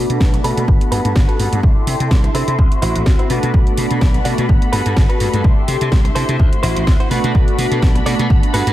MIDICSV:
0, 0, Header, 1, 7, 480
1, 0, Start_track
1, 0, Tempo, 476190
1, 687, Time_signature, 4, 2, 24, 8
1, 8799, End_track
2, 0, Start_track
2, 0, Title_t, "String section"
2, 0, Program_c, 0, 48
2, 0, Note_on_c, 0, 69, 79
2, 0, Note_on_c, 0, 74, 68
2, 0, Note_on_c, 0, 83, 86
2, 676, Note_off_c, 0, 74, 0
2, 689, Note_on_c, 0, 78, 71
2, 1626, Note_off_c, 0, 83, 0
2, 1638, Note_off_c, 0, 78, 0
2, 1643, Note_on_c, 0, 84, 89
2, 1644, Note_on_c, 0, 76, 74
2, 2577, Note_off_c, 0, 69, 0
2, 2609, Note_on_c, 0, 66, 72
2, 3308, Note_off_c, 0, 84, 0
2, 3309, Note_off_c, 0, 76, 0
2, 3321, Note_off_c, 0, 66, 0
2, 3328, Note_on_c, 0, 69, 75
2, 3328, Note_on_c, 0, 74, 69
2, 3328, Note_on_c, 0, 83, 88
2, 4516, Note_off_c, 0, 74, 0
2, 4526, Note_on_c, 0, 78, 68
2, 5466, Note_off_c, 0, 83, 0
2, 5477, Note_off_c, 0, 78, 0
2, 5489, Note_on_c, 0, 76, 73
2, 5490, Note_on_c, 0, 84, 85
2, 6416, Note_off_c, 0, 69, 0
2, 6437, Note_off_c, 0, 84, 0
2, 6449, Note_on_c, 0, 84, 81
2, 6450, Note_on_c, 0, 66, 73
2, 7151, Note_off_c, 0, 76, 0
2, 7161, Note_off_c, 0, 66, 0
2, 7161, Note_off_c, 0, 84, 0
2, 7169, Note_on_c, 0, 83, 87
2, 7170, Note_on_c, 0, 74, 70
2, 7171, Note_on_c, 0, 69, 80
2, 8357, Note_off_c, 0, 74, 0
2, 8371, Note_on_c, 0, 78, 72
2, 8799, Note_off_c, 0, 69, 0
2, 8799, Note_off_c, 0, 78, 0
2, 8799, Note_off_c, 0, 83, 0
2, 8799, End_track
3, 0, Start_track
3, 0, Title_t, "Clean electric guitar"
3, 0, Program_c, 1, 27
3, 0, Note_on_c, 1, 62, 81
3, 0, Note_on_c, 1, 69, 76
3, 0, Note_on_c, 1, 71, 96
3, 164, Note_off_c, 1, 62, 0
3, 164, Note_off_c, 1, 69, 0
3, 164, Note_off_c, 1, 71, 0
3, 446, Note_on_c, 1, 71, 118
3, 448, Note_on_c, 1, 69, 91
3, 450, Note_on_c, 1, 62, 100
3, 686, Note_off_c, 1, 62, 0
3, 687, Note_off_c, 1, 69, 0
3, 687, Note_off_c, 1, 71, 0
3, 923, Note_on_c, 1, 71, 118
3, 927, Note_on_c, 1, 69, 94
3, 930, Note_on_c, 1, 66, 102
3, 1112, Note_off_c, 1, 66, 0
3, 1112, Note_off_c, 1, 69, 0
3, 1112, Note_off_c, 1, 71, 0
3, 1295, Note_on_c, 1, 71, 95
3, 1299, Note_on_c, 1, 69, 83
3, 1303, Note_on_c, 1, 66, 75
3, 1646, Note_off_c, 1, 66, 0
3, 1646, Note_off_c, 1, 69, 0
3, 1647, Note_off_c, 1, 71, 0
3, 2365, Note_on_c, 1, 64, 108
3, 2372, Note_on_c, 1, 72, 102
3, 2374, Note_on_c, 1, 69, 85
3, 2607, Note_off_c, 1, 69, 0
3, 2608, Note_off_c, 1, 64, 0
3, 2608, Note_off_c, 1, 72, 0
3, 2843, Note_on_c, 1, 64, 110
3, 2848, Note_on_c, 1, 72, 114
3, 2851, Note_on_c, 1, 66, 89
3, 3032, Note_off_c, 1, 64, 0
3, 3032, Note_off_c, 1, 66, 0
3, 3032, Note_off_c, 1, 72, 0
3, 3216, Note_on_c, 1, 64, 86
3, 3221, Note_on_c, 1, 72, 90
3, 3226, Note_on_c, 1, 66, 70
3, 3322, Note_off_c, 1, 72, 0
3, 3324, Note_off_c, 1, 66, 0
3, 3326, Note_on_c, 1, 71, 101
3, 3327, Note_off_c, 1, 64, 0
3, 3328, Note_on_c, 1, 69, 82
3, 3331, Note_on_c, 1, 62, 69
3, 4003, Note_off_c, 1, 62, 0
3, 4003, Note_off_c, 1, 69, 0
3, 4004, Note_off_c, 1, 71, 0
3, 4047, Note_on_c, 1, 74, 73
3, 4165, Note_off_c, 1, 74, 0
3, 4280, Note_on_c, 1, 78, 74
3, 4285, Note_on_c, 1, 74, 116
3, 4289, Note_on_c, 1, 69, 94
3, 4295, Note_on_c, 1, 62, 96
3, 4509, Note_off_c, 1, 78, 0
3, 4526, Note_off_c, 1, 62, 0
3, 4526, Note_off_c, 1, 69, 0
3, 4526, Note_off_c, 1, 74, 0
3, 4763, Note_on_c, 1, 71, 119
3, 4766, Note_on_c, 1, 69, 91
3, 4769, Note_on_c, 1, 66, 87
3, 4952, Note_off_c, 1, 66, 0
3, 4952, Note_off_c, 1, 69, 0
3, 4952, Note_off_c, 1, 71, 0
3, 5134, Note_on_c, 1, 71, 106
3, 5139, Note_on_c, 1, 69, 71
3, 5143, Note_on_c, 1, 66, 69
3, 5486, Note_off_c, 1, 66, 0
3, 5486, Note_off_c, 1, 69, 0
3, 5486, Note_off_c, 1, 71, 0
3, 6202, Note_on_c, 1, 72, 105
3, 6206, Note_on_c, 1, 69, 88
3, 6210, Note_on_c, 1, 64, 94
3, 6446, Note_off_c, 1, 64, 0
3, 6446, Note_off_c, 1, 69, 0
3, 6446, Note_off_c, 1, 72, 0
3, 6681, Note_on_c, 1, 72, 121
3, 6686, Note_on_c, 1, 66, 95
3, 6689, Note_on_c, 1, 64, 102
3, 6871, Note_off_c, 1, 64, 0
3, 6871, Note_off_c, 1, 66, 0
3, 6871, Note_off_c, 1, 72, 0
3, 7057, Note_on_c, 1, 72, 97
3, 7058, Note_on_c, 1, 66, 70
3, 7061, Note_on_c, 1, 64, 68
3, 7159, Note_off_c, 1, 72, 0
3, 7163, Note_off_c, 1, 66, 0
3, 7163, Note_on_c, 1, 71, 102
3, 7166, Note_off_c, 1, 64, 0
3, 7167, Note_on_c, 1, 69, 75
3, 7172, Note_on_c, 1, 62, 77
3, 7843, Note_off_c, 1, 62, 0
3, 7843, Note_off_c, 1, 69, 0
3, 7843, Note_off_c, 1, 71, 0
3, 8125, Note_on_c, 1, 74, 113
3, 8128, Note_on_c, 1, 69, 99
3, 8130, Note_on_c, 1, 62, 95
3, 8366, Note_off_c, 1, 62, 0
3, 8367, Note_off_c, 1, 69, 0
3, 8367, Note_off_c, 1, 74, 0
3, 8605, Note_on_c, 1, 71, 116
3, 8609, Note_on_c, 1, 69, 95
3, 8612, Note_on_c, 1, 66, 97
3, 8792, Note_off_c, 1, 66, 0
3, 8793, Note_off_c, 1, 69, 0
3, 8793, Note_off_c, 1, 71, 0
3, 8799, End_track
4, 0, Start_track
4, 0, Title_t, "Analog polysynth"
4, 0, Program_c, 2, 90
4, 0, Note_on_c, 2, 57, 93
4, 0, Note_on_c, 2, 59, 88
4, 0, Note_on_c, 2, 62, 83
4, 0, Note_on_c, 2, 66, 102
4, 639, Note_off_c, 2, 57, 0
4, 641, Note_off_c, 2, 59, 0
4, 644, Note_off_c, 2, 62, 0
4, 647, Note_off_c, 2, 66, 0
4, 676, Note_on_c, 2, 57, 81
4, 681, Note_on_c, 2, 59, 73
4, 687, Note_on_c, 2, 62, 72
4, 693, Note_on_c, 2, 66, 87
4, 1598, Note_off_c, 2, 57, 0
4, 1601, Note_off_c, 2, 59, 0
4, 1604, Note_off_c, 2, 62, 0
4, 1607, Note_off_c, 2, 66, 0
4, 1640, Note_on_c, 2, 57, 80
4, 1645, Note_on_c, 2, 62, 74
4, 1651, Note_on_c, 2, 64, 74
4, 1656, Note_on_c, 2, 67, 88
4, 2560, Note_off_c, 2, 57, 0
4, 2563, Note_off_c, 2, 62, 0
4, 2566, Note_off_c, 2, 64, 0
4, 2568, Note_off_c, 2, 67, 0
4, 2598, Note_on_c, 2, 57, 81
4, 2604, Note_on_c, 2, 60, 74
4, 2609, Note_on_c, 2, 64, 72
4, 2615, Note_on_c, 2, 66, 88
4, 3279, Note_off_c, 2, 57, 0
4, 3282, Note_off_c, 2, 60, 0
4, 3285, Note_off_c, 2, 64, 0
4, 3287, Note_off_c, 2, 66, 0
4, 3319, Note_on_c, 2, 57, 95
4, 3325, Note_on_c, 2, 59, 85
4, 3330, Note_on_c, 2, 62, 85
4, 3335, Note_on_c, 2, 66, 103
4, 4480, Note_off_c, 2, 57, 0
4, 4483, Note_off_c, 2, 59, 0
4, 4485, Note_off_c, 2, 62, 0
4, 4488, Note_off_c, 2, 66, 0
4, 4520, Note_on_c, 2, 57, 80
4, 4524, Note_on_c, 2, 59, 74
4, 4529, Note_on_c, 2, 62, 74
4, 4535, Note_on_c, 2, 66, 88
4, 5440, Note_off_c, 2, 57, 0
4, 5442, Note_off_c, 2, 59, 0
4, 5445, Note_off_c, 2, 62, 0
4, 5448, Note_off_c, 2, 66, 0
4, 5480, Note_on_c, 2, 57, 82
4, 5485, Note_on_c, 2, 62, 75
4, 5490, Note_on_c, 2, 64, 74
4, 5496, Note_on_c, 2, 67, 88
4, 6400, Note_off_c, 2, 57, 0
4, 6403, Note_off_c, 2, 62, 0
4, 6405, Note_off_c, 2, 64, 0
4, 6408, Note_off_c, 2, 67, 0
4, 6440, Note_on_c, 2, 57, 79
4, 6446, Note_on_c, 2, 60, 75
4, 6451, Note_on_c, 2, 64, 75
4, 6456, Note_on_c, 2, 66, 88
4, 7120, Note_off_c, 2, 57, 0
4, 7123, Note_off_c, 2, 60, 0
4, 7126, Note_off_c, 2, 64, 0
4, 7128, Note_off_c, 2, 66, 0
4, 7158, Note_on_c, 2, 57, 94
4, 7164, Note_on_c, 2, 59, 85
4, 7169, Note_on_c, 2, 62, 86
4, 7175, Note_on_c, 2, 66, 106
4, 8319, Note_off_c, 2, 57, 0
4, 8322, Note_off_c, 2, 59, 0
4, 8325, Note_off_c, 2, 62, 0
4, 8328, Note_off_c, 2, 66, 0
4, 8358, Note_on_c, 2, 57, 83
4, 8364, Note_on_c, 2, 59, 76
4, 8369, Note_on_c, 2, 62, 76
4, 8374, Note_on_c, 2, 66, 89
4, 8799, Note_off_c, 2, 57, 0
4, 8799, Note_off_c, 2, 59, 0
4, 8799, Note_off_c, 2, 62, 0
4, 8799, Note_off_c, 2, 66, 0
4, 8799, End_track
5, 0, Start_track
5, 0, Title_t, "Slap bass"
5, 0, Program_c, 3, 36
5, 99, Note_on_c, 3, 47, 86
5, 173, Note_off_c, 3, 47, 0
5, 207, Note_on_c, 3, 35, 88
5, 378, Note_off_c, 3, 35, 0
5, 447, Note_on_c, 3, 47, 82
5, 537, Note_off_c, 3, 47, 0
5, 578, Note_on_c, 3, 47, 87
5, 652, Note_off_c, 3, 47, 0
5, 686, Note_on_c, 3, 31, 99
5, 776, Note_off_c, 3, 31, 0
5, 926, Note_on_c, 3, 43, 90
5, 1016, Note_off_c, 3, 43, 0
5, 1058, Note_on_c, 3, 43, 93
5, 1132, Note_off_c, 3, 43, 0
5, 1167, Note_on_c, 3, 31, 81
5, 1256, Note_off_c, 3, 31, 0
5, 1407, Note_on_c, 3, 43, 89
5, 1496, Note_off_c, 3, 43, 0
5, 1539, Note_on_c, 3, 43, 92
5, 1613, Note_off_c, 3, 43, 0
5, 1647, Note_on_c, 3, 36, 75
5, 1736, Note_off_c, 3, 36, 0
5, 1886, Note_on_c, 3, 48, 101
5, 1976, Note_off_c, 3, 48, 0
5, 2018, Note_on_c, 3, 48, 85
5, 2092, Note_off_c, 3, 48, 0
5, 2127, Note_on_c, 3, 36, 88
5, 2297, Note_off_c, 3, 36, 0
5, 2367, Note_on_c, 3, 48, 85
5, 2457, Note_off_c, 3, 48, 0
5, 2499, Note_on_c, 3, 48, 84
5, 2572, Note_off_c, 3, 48, 0
5, 2606, Note_on_c, 3, 38, 93
5, 2696, Note_off_c, 3, 38, 0
5, 2848, Note_on_c, 3, 33, 90
5, 2937, Note_off_c, 3, 33, 0
5, 2979, Note_on_c, 3, 33, 88
5, 3053, Note_off_c, 3, 33, 0
5, 3087, Note_on_c, 3, 38, 84
5, 3176, Note_off_c, 3, 38, 0
5, 3329, Note_on_c, 3, 47, 88
5, 3417, Note_off_c, 3, 47, 0
5, 3460, Note_on_c, 3, 47, 90
5, 3533, Note_off_c, 3, 47, 0
5, 3568, Note_on_c, 3, 35, 75
5, 3657, Note_off_c, 3, 35, 0
5, 3808, Note_on_c, 3, 47, 98
5, 3897, Note_off_c, 3, 47, 0
5, 3942, Note_on_c, 3, 47, 85
5, 4014, Note_off_c, 3, 47, 0
5, 4047, Note_on_c, 3, 35, 88
5, 4217, Note_off_c, 3, 35, 0
5, 4288, Note_on_c, 3, 47, 83
5, 4377, Note_off_c, 3, 47, 0
5, 4419, Note_on_c, 3, 47, 85
5, 4492, Note_off_c, 3, 47, 0
5, 4528, Note_on_c, 3, 31, 97
5, 4617, Note_off_c, 3, 31, 0
5, 4769, Note_on_c, 3, 43, 89
5, 4857, Note_off_c, 3, 43, 0
5, 4900, Note_on_c, 3, 43, 91
5, 4973, Note_off_c, 3, 43, 0
5, 5007, Note_on_c, 3, 31, 84
5, 5097, Note_off_c, 3, 31, 0
5, 5249, Note_on_c, 3, 43, 90
5, 5338, Note_off_c, 3, 43, 0
5, 5379, Note_on_c, 3, 43, 89
5, 5453, Note_off_c, 3, 43, 0
5, 5487, Note_on_c, 3, 36, 76
5, 5576, Note_off_c, 3, 36, 0
5, 5728, Note_on_c, 3, 48, 101
5, 5817, Note_off_c, 3, 48, 0
5, 5861, Note_on_c, 3, 48, 86
5, 5933, Note_off_c, 3, 48, 0
5, 5967, Note_on_c, 3, 36, 90
5, 6137, Note_off_c, 3, 36, 0
5, 6209, Note_on_c, 3, 48, 84
5, 6298, Note_off_c, 3, 48, 0
5, 6339, Note_on_c, 3, 48, 85
5, 6412, Note_off_c, 3, 48, 0
5, 6446, Note_on_c, 3, 38, 98
5, 6536, Note_off_c, 3, 38, 0
5, 6687, Note_on_c, 3, 33, 91
5, 6776, Note_off_c, 3, 33, 0
5, 6818, Note_on_c, 3, 33, 91
5, 6892, Note_off_c, 3, 33, 0
5, 6927, Note_on_c, 3, 38, 84
5, 7016, Note_off_c, 3, 38, 0
5, 7166, Note_on_c, 3, 47, 91
5, 7256, Note_off_c, 3, 47, 0
5, 7298, Note_on_c, 3, 47, 92
5, 7372, Note_off_c, 3, 47, 0
5, 7407, Note_on_c, 3, 35, 76
5, 7497, Note_off_c, 3, 35, 0
5, 7646, Note_on_c, 3, 47, 102
5, 7736, Note_off_c, 3, 47, 0
5, 7777, Note_on_c, 3, 47, 89
5, 7851, Note_off_c, 3, 47, 0
5, 7887, Note_on_c, 3, 35, 90
5, 8058, Note_off_c, 3, 35, 0
5, 8126, Note_on_c, 3, 47, 83
5, 8216, Note_off_c, 3, 47, 0
5, 8259, Note_on_c, 3, 47, 88
5, 8332, Note_off_c, 3, 47, 0
5, 8367, Note_on_c, 3, 31, 98
5, 8457, Note_off_c, 3, 31, 0
5, 8608, Note_on_c, 3, 43, 91
5, 8697, Note_off_c, 3, 43, 0
5, 8739, Note_on_c, 3, 43, 95
5, 8799, Note_off_c, 3, 43, 0
5, 8799, End_track
6, 0, Start_track
6, 0, Title_t, "Muted clean electric guitar strokes"
6, 337, Note_on_c, 9, 29, 79
6, 438, Note_off_c, 9, 29, 0
6, 2257, Note_on_c, 9, 29, 87
6, 2357, Note_off_c, 9, 29, 0
6, 4175, Note_on_c, 9, 29, 85
6, 4276, Note_off_c, 9, 29, 0
6, 6096, Note_on_c, 9, 29, 85
6, 6197, Note_off_c, 9, 29, 0
6, 8016, Note_on_c, 9, 29, 86
6, 8117, Note_off_c, 9, 29, 0
6, 8799, End_track
7, 0, Start_track
7, 0, Title_t, "Drums"
7, 100, Note_on_c, 9, 42, 63
7, 201, Note_off_c, 9, 42, 0
7, 207, Note_on_c, 9, 36, 120
7, 208, Note_on_c, 9, 38, 121
7, 308, Note_off_c, 9, 36, 0
7, 308, Note_off_c, 9, 38, 0
7, 341, Note_on_c, 9, 42, 52
7, 441, Note_off_c, 9, 42, 0
7, 448, Note_on_c, 9, 46, 94
7, 549, Note_off_c, 9, 46, 0
7, 579, Note_on_c, 9, 42, 64
7, 680, Note_off_c, 9, 42, 0
7, 686, Note_on_c, 9, 36, 120
7, 787, Note_off_c, 9, 36, 0
7, 819, Note_on_c, 9, 42, 51
7, 920, Note_off_c, 9, 42, 0
7, 926, Note_on_c, 9, 46, 109
7, 1027, Note_off_c, 9, 46, 0
7, 1059, Note_on_c, 9, 42, 64
7, 1159, Note_off_c, 9, 42, 0
7, 1165, Note_on_c, 9, 38, 116
7, 1167, Note_on_c, 9, 36, 123
7, 1266, Note_off_c, 9, 38, 0
7, 1268, Note_off_c, 9, 36, 0
7, 1298, Note_on_c, 9, 42, 35
7, 1399, Note_off_c, 9, 42, 0
7, 1407, Note_on_c, 9, 46, 91
7, 1507, Note_off_c, 9, 46, 0
7, 1539, Note_on_c, 9, 42, 62
7, 1640, Note_off_c, 9, 42, 0
7, 1647, Note_on_c, 9, 36, 123
7, 1747, Note_off_c, 9, 36, 0
7, 1887, Note_on_c, 9, 46, 108
7, 1988, Note_off_c, 9, 46, 0
7, 2019, Note_on_c, 9, 42, 62
7, 2120, Note_off_c, 9, 42, 0
7, 2126, Note_on_c, 9, 38, 119
7, 2127, Note_on_c, 9, 36, 118
7, 2227, Note_off_c, 9, 38, 0
7, 2228, Note_off_c, 9, 36, 0
7, 2258, Note_on_c, 9, 42, 50
7, 2359, Note_off_c, 9, 42, 0
7, 2366, Note_on_c, 9, 46, 97
7, 2467, Note_off_c, 9, 46, 0
7, 2498, Note_on_c, 9, 42, 62
7, 2599, Note_off_c, 9, 42, 0
7, 2607, Note_on_c, 9, 36, 118
7, 2708, Note_off_c, 9, 36, 0
7, 2739, Note_on_c, 9, 42, 48
7, 2840, Note_off_c, 9, 42, 0
7, 2846, Note_on_c, 9, 46, 108
7, 2947, Note_off_c, 9, 46, 0
7, 2979, Note_on_c, 9, 42, 64
7, 3080, Note_off_c, 9, 42, 0
7, 3085, Note_on_c, 9, 38, 113
7, 3087, Note_on_c, 9, 36, 116
7, 3186, Note_off_c, 9, 38, 0
7, 3188, Note_off_c, 9, 36, 0
7, 3218, Note_on_c, 9, 42, 33
7, 3319, Note_off_c, 9, 42, 0
7, 3326, Note_on_c, 9, 46, 93
7, 3427, Note_off_c, 9, 46, 0
7, 3458, Note_on_c, 9, 42, 60
7, 3559, Note_off_c, 9, 42, 0
7, 3568, Note_on_c, 9, 36, 122
7, 3668, Note_off_c, 9, 36, 0
7, 3698, Note_on_c, 9, 42, 34
7, 3799, Note_off_c, 9, 42, 0
7, 3806, Note_on_c, 9, 46, 107
7, 3906, Note_off_c, 9, 46, 0
7, 3937, Note_on_c, 9, 42, 59
7, 4038, Note_off_c, 9, 42, 0
7, 4045, Note_on_c, 9, 38, 117
7, 4047, Note_on_c, 9, 36, 121
7, 4146, Note_off_c, 9, 38, 0
7, 4148, Note_off_c, 9, 36, 0
7, 4177, Note_on_c, 9, 42, 49
7, 4278, Note_off_c, 9, 42, 0
7, 4285, Note_on_c, 9, 46, 93
7, 4386, Note_off_c, 9, 46, 0
7, 4417, Note_on_c, 9, 42, 62
7, 4518, Note_off_c, 9, 42, 0
7, 4527, Note_on_c, 9, 36, 117
7, 4628, Note_off_c, 9, 36, 0
7, 4657, Note_on_c, 9, 42, 47
7, 4758, Note_off_c, 9, 42, 0
7, 4766, Note_on_c, 9, 46, 103
7, 4867, Note_off_c, 9, 46, 0
7, 4897, Note_on_c, 9, 42, 62
7, 4998, Note_off_c, 9, 42, 0
7, 5005, Note_on_c, 9, 38, 110
7, 5007, Note_on_c, 9, 36, 117
7, 5106, Note_off_c, 9, 38, 0
7, 5108, Note_off_c, 9, 36, 0
7, 5137, Note_on_c, 9, 42, 35
7, 5238, Note_off_c, 9, 42, 0
7, 5245, Note_on_c, 9, 46, 89
7, 5346, Note_off_c, 9, 46, 0
7, 5378, Note_on_c, 9, 42, 61
7, 5479, Note_off_c, 9, 42, 0
7, 5487, Note_on_c, 9, 36, 120
7, 5588, Note_off_c, 9, 36, 0
7, 5617, Note_on_c, 9, 82, 24
7, 5718, Note_off_c, 9, 82, 0
7, 5726, Note_on_c, 9, 46, 104
7, 5729, Note_on_c, 9, 82, 97
7, 5827, Note_off_c, 9, 46, 0
7, 5830, Note_off_c, 9, 82, 0
7, 5858, Note_on_c, 9, 42, 62
7, 5959, Note_off_c, 9, 42, 0
7, 5965, Note_on_c, 9, 38, 112
7, 5967, Note_on_c, 9, 36, 116
7, 6066, Note_off_c, 9, 38, 0
7, 6068, Note_off_c, 9, 36, 0
7, 6098, Note_on_c, 9, 42, 50
7, 6199, Note_off_c, 9, 42, 0
7, 6205, Note_on_c, 9, 82, 82
7, 6206, Note_on_c, 9, 46, 91
7, 6305, Note_off_c, 9, 82, 0
7, 6307, Note_off_c, 9, 46, 0
7, 6338, Note_on_c, 9, 42, 61
7, 6439, Note_off_c, 9, 42, 0
7, 6446, Note_on_c, 9, 36, 110
7, 6547, Note_off_c, 9, 36, 0
7, 6576, Note_on_c, 9, 82, 24
7, 6579, Note_on_c, 9, 42, 51
7, 6677, Note_off_c, 9, 82, 0
7, 6680, Note_off_c, 9, 42, 0
7, 6687, Note_on_c, 9, 46, 101
7, 6688, Note_on_c, 9, 82, 88
7, 6788, Note_off_c, 9, 46, 0
7, 6789, Note_off_c, 9, 82, 0
7, 6819, Note_on_c, 9, 42, 64
7, 6920, Note_off_c, 9, 42, 0
7, 6926, Note_on_c, 9, 38, 112
7, 6927, Note_on_c, 9, 36, 113
7, 7027, Note_off_c, 9, 38, 0
7, 7028, Note_off_c, 9, 36, 0
7, 7058, Note_on_c, 9, 42, 35
7, 7067, Note_on_c, 9, 82, 26
7, 7159, Note_off_c, 9, 42, 0
7, 7167, Note_on_c, 9, 46, 85
7, 7168, Note_off_c, 9, 82, 0
7, 7172, Note_on_c, 9, 82, 80
7, 7268, Note_off_c, 9, 46, 0
7, 7273, Note_off_c, 9, 82, 0
7, 7299, Note_on_c, 9, 42, 64
7, 7399, Note_off_c, 9, 42, 0
7, 7407, Note_on_c, 9, 36, 113
7, 7407, Note_on_c, 9, 82, 53
7, 7508, Note_off_c, 9, 36, 0
7, 7508, Note_off_c, 9, 82, 0
7, 7537, Note_on_c, 9, 82, 27
7, 7538, Note_on_c, 9, 42, 36
7, 7637, Note_off_c, 9, 82, 0
7, 7639, Note_off_c, 9, 42, 0
7, 7644, Note_on_c, 9, 82, 85
7, 7646, Note_on_c, 9, 46, 101
7, 7744, Note_off_c, 9, 82, 0
7, 7747, Note_off_c, 9, 46, 0
7, 7778, Note_on_c, 9, 42, 63
7, 7780, Note_on_c, 9, 82, 36
7, 7878, Note_off_c, 9, 42, 0
7, 7881, Note_off_c, 9, 82, 0
7, 7886, Note_on_c, 9, 38, 109
7, 7887, Note_on_c, 9, 36, 112
7, 7987, Note_off_c, 9, 38, 0
7, 7988, Note_off_c, 9, 36, 0
7, 8019, Note_on_c, 9, 42, 52
7, 8120, Note_off_c, 9, 42, 0
7, 8126, Note_on_c, 9, 82, 86
7, 8128, Note_on_c, 9, 46, 90
7, 8227, Note_off_c, 9, 82, 0
7, 8229, Note_off_c, 9, 46, 0
7, 8260, Note_on_c, 9, 42, 64
7, 8361, Note_off_c, 9, 42, 0
7, 8368, Note_on_c, 9, 36, 112
7, 8373, Note_on_c, 9, 82, 52
7, 8468, Note_off_c, 9, 36, 0
7, 8473, Note_off_c, 9, 82, 0
7, 8501, Note_on_c, 9, 42, 51
7, 8600, Note_on_c, 9, 82, 91
7, 8602, Note_off_c, 9, 42, 0
7, 8608, Note_on_c, 9, 46, 99
7, 8701, Note_off_c, 9, 82, 0
7, 8709, Note_off_c, 9, 46, 0
7, 8738, Note_on_c, 9, 82, 37
7, 8740, Note_on_c, 9, 42, 68
7, 8799, Note_off_c, 9, 42, 0
7, 8799, Note_off_c, 9, 82, 0
7, 8799, End_track
0, 0, End_of_file